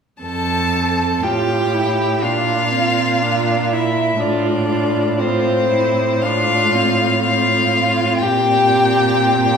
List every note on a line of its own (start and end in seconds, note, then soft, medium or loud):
0.21 1.19 F2 soft
0.21 1.25 C4 soft
0.21 1.25 A4 medium
0.21 1.25 A5 medium
1.23 2.25 A2 soft
1.23 1.76 F4 soft
1.23 2.24 G4 soft
1.23 2.25 G5 medium
1.74 2.24 E4 soft
2.22 4.21 A#2 soft
2.22 2.73 D4 soft
2.22 3.75 F4 medium
2.22 3.72 F5 medium
2.72 3.24 C4 soft
3.22 3.74 D4 soft
3.73 4.20 E4 soft
3.73 4.19 E4 medium
3.73 4.22 E5 soft
4.20 8.22 A2 soft
4.20 5.22 D4 medium
4.20 4.68 F4 soft
4.20 5.21 D5 medium
4.69 5.17 F4 soft
5.18 6.24 C4 soft
5.18 5.69 F4 soft
5.18 6.23 C5 medium
5.71 6.26 E4 soft
6.22 6.76 D4 soft
6.22 7.23 F4 medium
6.22 7.22 F5 medium
6.74 7.23 C4 soft
7.23 9.57 C4 soft
7.23 8.23 F4 medium
7.23 8.18 F5 medium
8.18 9.57 A#2 medium
8.18 9.57 G4 medium
8.18 9.57 G5 medium